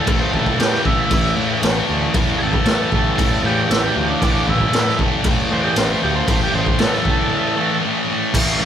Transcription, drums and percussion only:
0.07 kick, crash
0.33 kick
0.46 kick
0.60 snare, crash
0.74 snare
0.85 kick
1.11 kick, crash
1.63 snare, crash
2.14 kick, crash
2.53 kick
2.66 snare, crash
2.92 kick
3.18 kick, crash
3.71 snare, crash
4.22 kick, crash
4.48 kick
4.60 kick
4.73 snare, crash
4.88 snare
4.99 kick
5.24 kick, crash
5.76 snare, crash
6.28 kick, crash
6.66 kick
6.79 snare, crash
6.93 snare
7.05 kick
8.34 kick, crash

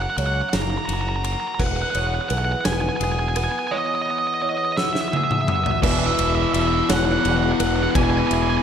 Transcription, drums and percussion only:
0.18 ride
0.53 snare, ride
0.89 ride
1.24 ride
1.60 kick, crash
1.95 ride
2.30 ride
2.65 snare, ride
3.01 ride
3.36 ride
4.78 snare
4.95 snare
5.13 high tom
5.31 mid tom
5.48 mid tom
5.66 floor tom
5.83 kick, crash
6.19 ride
6.54 ride
6.90 snare, ride
7.25 ride
7.60 ride
7.95 kick, ride
8.31 ride

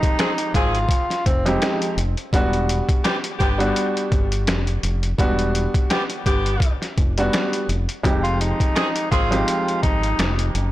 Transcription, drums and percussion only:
0.03 kick, closed hi-hat
0.19 snare, closed hi-hat
0.38 closed hi-hat
0.54 kick, closed hi-hat
0.75 closed hi-hat
0.89 kick, closed hi-hat
1.10 snare, closed hi-hat
1.26 kick, closed hi-hat
1.46 closed hi-hat
1.62 snare, closed hi-hat
1.82 closed hi-hat
1.98 closed hi-hat
2.17 closed hi-hat
2.33 kick, closed hi-hat
2.53 closed hi-hat
2.69 closed hi-hat
2.89 kick, closed hi-hat
3.04 snare, closed hi-hat
3.24 closed hi-hat
3.40 kick, closed hi-hat
3.60 closed hi-hat
3.76 closed hi-hat
3.97 closed hi-hat
4.12 kick, closed hi-hat
4.32 closed hi-hat
4.47 snare, closed hi-hat
4.67 closed hi-hat
4.83 closed hi-hat
5.03 closed hi-hat
5.19 kick, closed hi-hat
5.39 closed hi-hat
5.55 closed hi-hat
5.74 kick, closed hi-hat
5.90 snare, closed hi-hat
6.10 closed hi-hat
6.26 kick, closed hi-hat
6.46 closed hi-hat
6.60 kick, closed hi-hat
6.82 snare, closed hi-hat
6.98 kick, closed hi-hat
7.18 closed hi-hat
7.33 snare, closed hi-hat
7.53 closed hi-hat
7.69 closed hi-hat
7.89 closed hi-hat
8.04 kick, closed hi-hat
8.25 closed hi-hat
8.41 closed hi-hat
8.60 kick, closed hi-hat
8.76 snare, closed hi-hat
8.96 closed hi-hat
9.12 kick, closed hi-hat
9.32 closed hi-hat
9.48 closed hi-hat
9.68 closed hi-hat
9.83 kick, closed hi-hat
10.03 closed hi-hat
10.19 snare, closed hi-hat
10.39 closed hi-hat
10.55 closed hi-hat

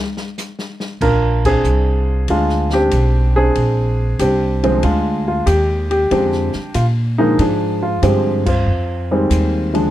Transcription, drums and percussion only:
0.17 snare
0.38 snare, hi-hat pedal
0.59 snare
0.80 snare
1.01 kick, crash
1.45 kick, crash
1.64 hi-hat pedal
2.28 kick, ride
2.49 snare
2.70 snare
2.91 kick, hi-hat pedal, ride
3.55 kick, ride
4.19 kick, hi-hat pedal, ride
4.63 ride
4.83 kick, ride
5.47 kick, hi-hat pedal, ride
5.91 ride
6.11 kick, ride
6.32 snare
6.53 snare
6.74 kick, hi-hat pedal, ride
7.39 kick, ride
8.03 kick, hi-hat pedal, ride
8.46 kick, crash
9.30 kick, hi-hat pedal, ride
9.75 ride

